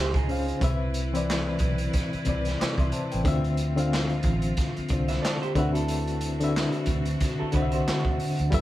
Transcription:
Already playing: fingered electric bass C#2, string section C#3 C4 F4, clean electric guitar G4 C5
0.14 clean electric guitar D#4 G#4, kick, closed hi-hat
0.28 reed electric piano C#3 C#4 C5 F5, open hi-hat
0.48 closed hi-hat
0.60 fingered electric bass C2, reed electric piano C3 C4 B4 E5, string section C4 E4 B4, kick, closed hi-hat
0.94 closed hi-hat
1.13 reed electric piano E3 C4 B4 D5, closed hi-hat
1.30 snare, clap
1.59 fingered electric bass B1, kick, closed hi-hat
1.78 closed hi-hat
1.93 kick, snare, closed hi-hat
2.13 muted fingered electric bass stroke, closed hi-hat
2.25 fingered electric bass C2, reed electric piano C3 C4 B4 D5, kick, closed hi-hat
2.45 snare, closed hi-hat
2.60 reed electric piano D6, muted fingered electric bass stroke, snare, clap
2.78 fingered electric bass C2, reed electric piano E5 C6, kick, closed hi-hat
2.92 reed electric piano C5 A5, closed hi-hat
3.12 fingered electric bass A1, reed electric piano B4 G5, closed hi-hat
3.24 fingered electric bass D2, reed electric piano D3 C4 F4 E5, string section F3 C4 F4, kick, closed hi-hat
3.44 closed hi-hat
3.57 closed hi-hat
3.76 reed electric piano D3 C4 F4 F5, closed hi-hat
3.94 snare, clap
4.09 closed hi-hat
4.23 fingered electric bass A1, kick, closed hi-hat
4.42 closed hi-hat
4.57 kick, snare, closed hi-hat
4.76 muted fingered electric bass stroke, closed hi-hat
4.88 fingered electric bass C2, reed electric piano D3 C4 F4, kick, closed hi-hat
4.93 reed electric piano C5
5.08 clean electric guitar B4 E5, snare, closed hi-hat
5.22 clean electric guitar A4 D5, snare, clap
5.42 clean electric guitar G4 C5, closed hi-hat
5.55 fingered electric bass D2, reed electric piano D3 C4 E4 B4 E5, string section D3 C4 D4 F#4, clean electric guitar F#4 B4, kick, closed hi-hat
5.63 reed electric piano F#4
5.74 clean electric guitar E4 A4, closed hi-hat
5.88 closed hi-hat
6.07 closed hi-hat
6.21 closed hi-hat
6.40 reed electric piano D3 C4 E4 B4 E5, closed hi-hat
6.49 reed electric piano F#4
6.57 snare, clap
6.72 closed hi-hat
6.86 fingered electric bass D2, kick, closed hi-hat
7.05 closed hi-hat
7.20 kick, snare, closed hi-hat
7.39 clean electric guitar E4 A4, muted fingered electric bass stroke
7.52 fingered electric bass C2, reed electric piano D3 C4 F#4 C5 D#5, clean electric guitar F#4 B4, kick, closed hi-hat
7.62 reed electric piano E5
7.72 clean electric guitar F#4 C5, closed hi-hat
7.88 muted fingered electric bass stroke, snare, clap
8.05 fingered electric bass D2, kick
8.20 open hi-hat
8.39 fingered electric bass D2, closed hi-hat
8.50 fingered electric bass G1, string section F3 A3, reed electric piano G3 F4 A4 B4, kick, closed hi-hat
8.54 reed electric piano E5

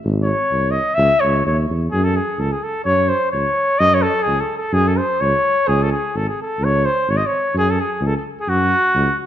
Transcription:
0.05 tuba G#1
0.23 flugelhorn C#5
0.52 tuba C2
0.71 flugelhorn D#5
0.94 tuba C#2, flugelhorn E5
1.20 tuba C#2, flugelhorn C#5
1.46 tuba D#2, flugelhorn C#5
1.70 tuba E2
1.91 tuba F#2, flugelhorn G#4
2.04 flugelhorn A4
2.16 flugelhorn G#4
2.39 tuba C#2, flugelhorn A4
2.52 flugelhorn G#4
2.63 flugelhorn A4
2.85 tuba F#2, flugelhorn C#5
3.09 flugelhorn C5
3.31 tuba C#2, flugelhorn C#5
3.79 tuba F#2, flugelhorn D#5
3.94 flugelhorn C#5
4.02 flugelhorn A4
4.23 tuba C#2, flugelhorn G#4
4.40 flugelhorn A4
4.58 flugelhorn A4
4.72 tuba F#2, flugelhorn G#4
4.88 flugelhorn A4
4.97 flugelhorn C5
5.21 tuba C#2, flugelhorn C#5
5.68 tuba C#2, flugelhorn G#4
5.83 flugelhorn A4
5.92 flugelhorn G#4
6.15 tuba G#1, flugelhorn A4
6.29 flugelhorn G#4
6.42 flugelhorn A4
6.60 tuba C#2
6.64 flugelhorn C#5
6.85 flugelhorn C5
7.08 tuba G#1, flugelhorn C#5
7.17 flugelhorn D#5
7.26 flugelhorn C#5
7.54 tuba F#2, flugelhorn G#4
7.70 flugelhorn A4
7.80 flugelhorn G#4
8.01 tuba C#2
8.06 flugelhorn A4
8.16 flugelhorn A4
8.41 flugelhorn G#4
8.47 tuba F#2, flugelhorn F#4
8.94 tuba C#2

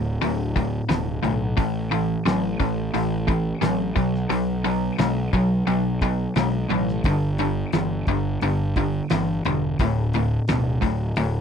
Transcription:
Already playing: picked electric bass D1, overdriven electric guitar D2 A2
0.21 picked electric bass D1, overdriven electric guitar D2 A2, open hi-hat
0.56 overdriven electric guitar D2 A2, kick, open hi-hat
0.89 picked electric bass D1, overdriven electric guitar D2 B2, snare, open hi-hat
1.23 picked electric bass B1, overdriven electric guitar D2 A2, open hi-hat
1.57 picked electric bass A1, overdriven electric guitar A2 E3, kick, open hi-hat
1.91 overdriven electric guitar A2 E3, open hi-hat
2.26 picked electric bass A1, overdriven electric guitar A2 F#3, snare, open hi-hat
2.60 picked electric bass A1, overdriven electric guitar A2 E3, kick, open hi-hat
2.94 picked electric bass A1, overdriven electric guitar A2 E3, open hi-hat
3.28 overdriven electric guitar A2 E3, kick, open hi-hat
3.61 picked electric bass A1, overdriven electric guitar A2 F#3, snare, open hi-hat
3.96 picked electric bass B1, overdriven electric guitar B2 F#3, kick, open hi-hat
4.15 snare
4.29 picked electric bass B1, overdriven electric guitar B2 F#3, open hi-hat
4.64 overdriven electric guitar B2 F#3, open hi-hat
4.99 picked electric bass B1, overdriven electric guitar B2 G#3, snare, open hi-hat
5.33 picked electric bass B1, overdriven electric guitar B2 F#3, kick, open hi-hat
5.67 picked electric bass B1, overdriven electric guitar B2 F#3, open hi-hat
6.01 overdriven electric guitar B2 F#3, kick, open hi-hat
6.36 picked electric bass B1, overdriven electric guitar B2 G#3, snare, open hi-hat
6.70 picked electric bass A1, overdriven electric guitar B2 F#3, open hi-hat
6.88 snare
7.04 picked electric bass G1, overdriven electric guitar G2 D3, kick, open hi-hat
7.38 overdriven electric guitar G2 D3, open hi-hat
7.73 picked electric bass G1, overdriven electric guitar G2 E3, snare, open hi-hat
8.07 picked electric bass G1, overdriven electric guitar G2 D3, kick, open hi-hat
8.41 picked electric bass G1, overdriven electric guitar G2 D3, open hi-hat
8.76 overdriven electric guitar G2 D3, kick, open hi-hat
9.10 picked electric bass G1, overdriven electric guitar G2 E3, snare, open hi-hat
9.45 picked electric bass E1, overdriven electric guitar G2 D3, open hi-hat
9.79 picked electric bass D1, overdriven electric guitar D2 A2, kick, open hi-hat
10.14 overdriven electric guitar D2 A2, open hi-hat
10.48 picked electric bass D1, overdriven electric guitar D2 B2, snare, open hi-hat
10.82 picked electric bass D1, overdriven electric guitar D2 A2, kick, open hi-hat
11.16 picked electric bass D1, overdriven electric guitar D2 A2, open hi-hat

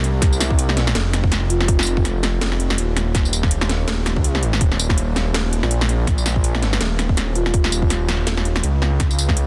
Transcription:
Already playing: detuned saw bass C2
0.04 closed hi-hat
0.22 kick, snare, closed hi-hat
0.33 tambourine
0.41 snare, closed hi-hat, tambourine
0.51 kick
0.59 closed hi-hat
0.69 snare
0.77 detuned saw bass A#1, snare, closed hi-hat
0.87 snare
0.95 detuned saw bass F1, snare, closed hi-hat
1.13 snare, closed hi-hat
1.24 kick
1.32 snare, closed hi-hat
1.50 marimba F4, closed hi-hat
1.61 snare
1.68 kick, closed hi-hat
1.79 snare, tambourine
1.87 closed hi-hat
1.97 kick
2.05 snare, closed hi-hat
2.23 snare, closed hi-hat
2.41 snare, closed hi-hat
2.52 snare
2.60 closed hi-hat
2.70 snare
2.78 detuned saw bass D#1, closed hi-hat
2.97 snare, closed hi-hat
3.15 kick, snare, closed hi-hat
3.25 tambourine
3.33 closed hi-hat, tambourine
3.43 kick, snare
3.51 closed hi-hat
3.61 snare
3.69 snare, closed hi-hat
3.88 snare, closed hi-hat
4.06 snare, closed hi-hat
4.16 detuned saw bass F2, kick
4.24 detuned saw bass C2, closed hi-hat
4.35 snare
4.43 detuned saw bass G#1, closed hi-hat
4.53 snare
4.61 detuned saw bass D#1, kick, closed hi-hat
4.72 snare
4.79 closed hi-hat, tambourine
4.90 kick, snare
4.98 closed hi-hat
5.16 snare, closed hi-hat
5.34 snare, closed hi-hat
5.53 closed hi-hat
5.63 detuned saw bass A#1, snare
5.71 closed hi-hat
5.81 snare
5.89 closed hi-hat
6.07 kick, snare, closed hi-hat
6.18 tambourine
6.26 snare, closed hi-hat, tambourine
6.36 kick
6.44 closed hi-hat
6.55 snare
6.62 detuned saw bass G1, snare, closed hi-hat
6.73 snare
6.80 detuned saw bass D#1, snare, closed hi-hat
6.99 snare, closed hi-hat
7.09 kick
7.17 snare, closed hi-hat
7.35 marimba F4, closed hi-hat
7.46 snare
7.54 kick, closed hi-hat
7.64 snare
7.72 closed hi-hat, tambourine
7.82 kick
7.90 snare, closed hi-hat
8.09 snare, closed hi-hat
8.27 snare, closed hi-hat
8.37 snare
8.45 closed hi-hat
8.56 snare
8.63 detuned saw bass C#2, closed hi-hat
8.82 snare
9.00 kick, snare, closed hi-hat
9.11 tambourine
9.19 closed hi-hat, tambourine
9.29 kick, snare
9.37 closed hi-hat

